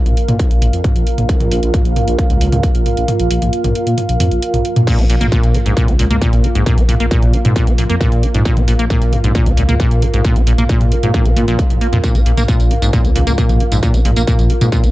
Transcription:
Already playing: F4 A#4 F5
0.06 A#1, closed hi-hat, mid tom
0.17 open hi-hat
0.28 A#2, closed hi-hat, mid tom
0.39 kick, closed hi-hat
0.51 A#1, closed hi-hat
0.62 A#1, mid tom, open hi-hat
0.73 F2, closed hi-hat
0.84 kick, closed hi-hat, mid tom
0.96 A#1, closed hi-hat
1.07 open hi-hat
1.18 A#1, closed hi-hat, mid tom
1.29 kick, closed hi-hat
1.40 A#1, closed hi-hat, mid tom
1.51 A#1, open hi-hat
1.63 A#1, closed hi-hat
1.74 kick, closed hi-hat, mid tom
1.85 A#1, closed hi-hat
1.96 mid tom, open hi-hat
2.08 A#1, closed hi-hat
2.19 kick, closed hi-hat
2.30 C#2, closed hi-hat, mid tom
2.41 C#2, open hi-hat
2.52 C#2, closed hi-hat, mid tom
2.63 kick, closed hi-hat
2.75 A#1, closed hi-hat
2.86 mid tom, open hi-hat
2.97 A#1, closed hi-hat
3.08 closed hi-hat, mid tom
3.19 A#1, closed hi-hat
3.30 A#1, open hi-hat
3.42 A#1, closed hi-hat, mid tom
3.53 closed hi-hat
3.64 A#1, closed hi-hat, mid tom
3.75 open hi-hat
3.87 A#2, closed hi-hat
3.98 closed hi-hat, mid tom
4.09 A#1, closed hi-hat
4.20 F2, mid tom, open hi-hat
4.31 A#1, closed hi-hat
4.42 closed hi-hat
4.54 A#1, closed hi-hat, mid tom
4.65 open hi-hat
4.76 A#2, closed hi-hat, mid tom
4.87 A#2, kick, closed hi-hat, crash
4.99 A#1 C#4, closed hi-hat, mid tom
5.09 A#1 A#2, open hi-hat
5.21 A#1 A#3, closed hi-hat, mid tom
5.32 A#2, kick, closed hi-hat
5.43 A#1, closed hi-hat
5.54 D#3, mid tom, open hi-hat
5.66 A#1 G#2, closed hi-hat
5.77 A#2, kick, closed hi-hat, mid tom
5.88 C#2 C#4, closed hi-hat
5.99 C#2 A#2, open hi-hat
6.10 C#2 A#3, closed hi-hat, mid tom
6.21 A#2, kick, closed hi-hat
6.33 A#1, closed hi-hat, mid tom
6.44 D#3, open hi-hat
6.55 A#1 G#2, closed hi-hat
6.66 A#2, kick, closed hi-hat, mid tom
6.78 A#1 C#4, closed hi-hat
6.89 A#1 A#2, mid tom, open hi-hat
7.00 A#1 A#3, closed hi-hat
7.11 A#2, kick, closed hi-hat
7.22 A#1, closed hi-hat, mid tom
7.33 D#3, open hi-hat
7.45 G#2 A#2, closed hi-hat, mid tom
7.56 A#2, kick, closed hi-hat
7.67 A#1 C#4, closed hi-hat
7.78 A#1 A#2, mid tom, open hi-hat
7.90 F2 A#3, closed hi-hat
8.01 A#2, kick, closed hi-hat, mid tom
8.12 A#1, closed hi-hat
8.23 D#3, open hi-hat
8.34 A#1 G#2, closed hi-hat, mid tom
8.45 A#2, kick, closed hi-hat
8.57 A#1 C#4, closed hi-hat, mid tom
8.68 A#1 A#2, open hi-hat
8.79 A#1 A#3, closed hi-hat
8.90 A#2, kick, closed hi-hat, mid tom
9.02 A#1, closed hi-hat
9.13 D#3, mid tom, open hi-hat
9.24 A#1 G#2, closed hi-hat
9.35 A#2, kick, closed hi-hat
9.46 C#2 C#4, closed hi-hat, mid tom
9.57 C#2 A#2, open hi-hat
9.69 C#2 A#3, closed hi-hat, mid tom
9.80 A#2, kick, closed hi-hat
9.91 A#1, closed hi-hat
10.02 D#3, mid tom, open hi-hat
10.14 A#1 G#2, closed hi-hat
10.25 A#2, kick, closed hi-hat, mid tom
10.36 A#1 C#4, closed hi-hat
10.47 A#1 A#2, open hi-hat
10.58 A#1 A#3, closed hi-hat, mid tom
10.69 A#2, kick, closed hi-hat
10.81 A#1, closed hi-hat, mid tom
10.92 D#3, open hi-hat
11.03 G#2 A#2, closed hi-hat
11.14 A#2, kick, closed hi-hat, mid tom
11.25 A#1 C#4, closed hi-hat
11.36 A#2, mid tom, open hi-hat
11.48 A#1 A#2, closed hi-hat
11.59 A#3, kick, closed hi-hat
11.70 A#1, closed hi-hat, mid tom
11.81 A#3, open hi-hat
11.93 F2 A#2, closed hi-hat, mid tom
12.04 A#2, kick, closed hi-hat, tambourine
12.15 A#1 C#4, closed hi-hat, mid tom, tambourine
12.26 A#1 A#2, open hi-hat
12.37 A#1 A#3, closed hi-hat, mid tom, tambourine
12.48 A#2, kick, closed hi-hat, tambourine
12.60 A#1, closed hi-hat, tambourine
12.71 D#3, mid tom, open hi-hat
12.82 A#1 G#2, closed hi-hat, tambourine
12.93 A#2, kick, closed hi-hat, mid tom, tambourine
13.04 C#2 C#4, closed hi-hat, tambourine
13.15 C#2 A#2, open hi-hat
13.27 C#2 A#3, closed hi-hat, mid tom, tambourine
13.38 A#2, kick, closed hi-hat, tambourine
13.49 A#1, closed hi-hat, mid tom, tambourine
13.60 D#3, open hi-hat
13.72 A#1 G#2, closed hi-hat, tambourine
13.83 A#2, kick, closed hi-hat, mid tom, tambourine
13.94 A#1 C#4, closed hi-hat, tambourine
14.05 A#1 A#2, mid tom, open hi-hat
14.16 A#1 A#3, closed hi-hat, tambourine
14.27 A#2, kick, closed hi-hat, tambourine
14.39 A#1, closed hi-hat, mid tom, tambourine
14.50 D#3, open hi-hat
14.61 G#2 A#2, closed hi-hat, mid tom, tambourine
14.72 A#2, kick, closed hi-hat, tambourine
14.84 A#1 C#4, closed hi-hat, tambourine

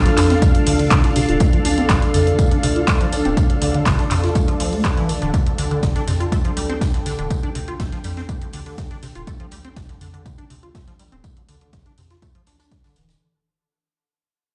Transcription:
Already playing: D4 A4 F5
0.05 F3, snare, closed hi-hat
0.17 F2 D4, clap, open hi-hat, tambourine
0.30 C4, snare, closed hi-hat
0.42 D2 D3, kick, closed hi-hat, tambourine
0.55 D2, closed hi-hat
0.66 D3, open hi-hat
0.79 D3, closed hi-hat
0.91 C3, kick, snare, clap, closed hi-hat, tambourine
1.04 D4, snare, closed hi-hat
1.16 C3, open hi-hat, tambourine
1.29 D1 F4, closed hi-hat
1.40 D2 A3, kick, closed hi-hat, tambourine
1.53 F3, closed hi-hat
1.65 D4, open hi-hat, tambourine
1.78 C4, closed hi-hat
1.89 A1 D3, kick, snare, clap, closed hi-hat, tambourine
2.02 D2, snare, closed hi-hat
2.14 F2 D3, open hi-hat, tambourine
2.27 D3, closed hi-hat
2.39 D2 C3, kick, closed hi-hat, tambourine
2.51 D4, closed hi-hat
2.63 C3, open hi-hat, tambourine
2.76 F4, closed hi-hat
2.87 A3, kick, snare, clap, closed hi-hat, tambourine
3.00 F3, snare, closed hi-hat
3.13 D4, open hi-hat, tambourine
3.25 D1 C4, closed hi-hat
3.37 D2 D3, kick, closed hi-hat, tambourine
3.50 D2, closed hi-hat
3.62 D3, open hi-hat, tambourine
3.74 D3, closed hi-hat
3.86 A1 C3, kick, snare, clap, closed hi-hat, tambourine
3.99 D4, snare, closed hi-hat
4.11 F2 C3, clap, open hi-hat, tambourine
4.24 F4, snare, closed hi-hat
4.35 D2 A3, kick, closed hi-hat, tambourine
4.48 F3, closed hi-hat
4.60 F3, open hi-hat
4.73 A3, closed hi-hat
4.85 C3, kick, snare, clap, closed hi-hat, tambourine
4.97 E3, snare, closed hi-hat
5.09 D3, open hi-hat, tambourine
5.22 D1 D3, closed hi-hat
5.34 D2 D3 G5, kick, closed hi-hat, tambourine
5.47 D2, closed hi-hat
5.58 D3, open hi-hat, tambourine
5.71 D3, closed hi-hat
5.83 A1 C3, kick, snare, closed hi-hat, tambourine
5.96 D4, snare, closed hi-hat
6.08 F2 C3, open hi-hat, tambourine
6.20 F4, closed hi-hat
6.32 D2 A3, kick, closed hi-hat, tambourine
6.44 F3, closed hi-hat
6.57 G3, open hi-hat, tambourine
6.70 C4, closed hi-hat
6.81 D3, kick, snare, closed hi-hat, tambourine
6.94 D2, snare, closed hi-hat
7.06 D3, open hi-hat, tambourine
7.19 D1 D3, closed hi-hat
7.30 D2 C3, kick, closed hi-hat, tambourine
7.43 D4, closed hi-hat
7.55 C3, open hi-hat, tambourine
7.68 F4, closed hi-hat
7.80 A1 A3, kick, snare, closed hi-hat, tambourine
7.92 F3, snare, closed hi-hat
8.04 F2 G3, open hi-hat, tambourine
8.17 C4, snare, closed hi-hat
8.29 D2 D3, kick, closed hi-hat, tambourine
8.42 D2, closed hi-hat
8.53 D3, open hi-hat
8.66 D3, closed hi-hat
8.78 C3, kick, snare, closed hi-hat, tambourine
8.90 D4, snare, closed hi-hat
9.03 C3, open hi-hat, tambourine
9.15 D1 F4, closed hi-hat
9.27 D2 A3, kick, closed hi-hat, tambourine
9.40 F3, closed hi-hat
9.51 G3, open hi-hat, tambourine
9.65 C4, closed hi-hat
9.76 A1 D3, kick, snare, closed hi-hat, tambourine
9.89 D2, snare, closed hi-hat
10.01 F2 D3, open hi-hat, tambourine
10.14 D3, closed hi-hat
10.26 D2 C3, kick, closed hi-hat, tambourine
10.38 D4, closed hi-hat
10.50 C3, open hi-hat, tambourine
10.63 F4, closed hi-hat
10.75 A3, kick, snare, closed hi-hat, tambourine
10.87 F3, snare, closed hi-hat
10.99 G3, open hi-hat, tambourine
11.12 D1 C4, closed hi-hat
11.24 D2 D3, kick, closed hi-hat, tambourine
11.37 D2, closed hi-hat
11.49 D3, open hi-hat, tambourine
11.61 D3, closed hi-hat
11.73 A1 C3, kick, snare, closed hi-hat, tambourine
11.86 D4, snare, closed hi-hat
11.98 F2 C3, open hi-hat, tambourine
12.10 F4, snare, closed hi-hat
12.22 D2 A3, kick, closed hi-hat, tambourine
12.35 F3, closed hi-hat
12.46 D4, snare, open hi-hat, tambourine
12.59 D4, snare, closed hi-hat, tambourine
12.71 D2 D3, kick, snare, closed hi-hat
12.84 D3, snare, closed hi-hat, tambourine
12.96 D1 E3, snare, open hi-hat, tambourine
13.09 D3, snare, closed hi-hat, tambourine

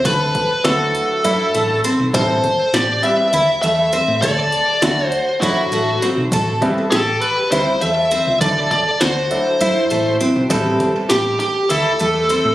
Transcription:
0.05 D2 A4 B4, kick, closed hi-hat
0.35 kick, closed hi-hat
0.64 D2 F#3 A3 D4 E4 F#4 A4, snare, closed hi-hat
0.95 closed hi-hat
1.24 F#2 F#3 A3 D4 E4, closed hi-hat
1.54 A1 A3, closed hi-hat
1.84 C4, closed hi-hat
1.99 B1
2.13 A1 G3 B3 C4 E4 A4 C5, kick, closed hi-hat
2.44 kick, closed hi-hat
2.73 A1 G4 D5, snare, closed hi-hat
3.02 G3 B3 C4 E4 E5, closed hi-hat
3.33 D2 E4, closed hi-hat
3.62 E2 A3 E5, closed hi-hat
3.93 C4, closed hi-hat
4.08 A2
4.22 D2 A4 D5, kick, closed hi-hat
4.52 closed hi-hat
4.82 D2 F#3 A3 D4 E4 F#4, snare, closed hi-hat
5.07 C5
5.12 closed hi-hat
5.41 F#2 F#3 A3 D4 E4 F#4, kick, closed hi-hat
5.72 A1 A3, closed hi-hat
6.02 C4, snare, closed hi-hat
6.17 B1
6.32 A1 A4, kick, closed hi-hat
6.61 G3 B3 C4 E4, kick, closed hi-hat
6.91 A1 G4 A4, snare, closed hi-hat
7.22 B4, closed hi-hat
7.51 D2 G3 B3 C4 E4 C5, closed hi-hat
7.81 E2 A3 E5, closed hi-hat
8.11 C4, closed hi-hat
8.27 C#2
8.41 D2 F#3 A3 D4 E4 A4 D5, kick, closed hi-hat
8.71 D5, kick, closed hi-hat
9.01 D2 F#4 C5, snare, closed hi-hat
9.30 F#3 A3 D4 E4, closed hi-hat
9.61 F#2 E4, closed hi-hat
9.90 A1 A3, closed hi-hat
10.20 C4 F#4, closed hi-hat
10.36 B1
10.50 A1 G3 B3 C4 E4 G4 A4, kick, closed hi-hat
10.80 kick, snare, closed hi-hat
11.09 A1 G4, snare, closed hi-hat
11.39 G4, snare, closed hi-hat
11.69 D2 E4 A4, closed hi-hat
11.99 E2 A3, closed hi-hat
12.29 C4, closed hi-hat
12.45 A2

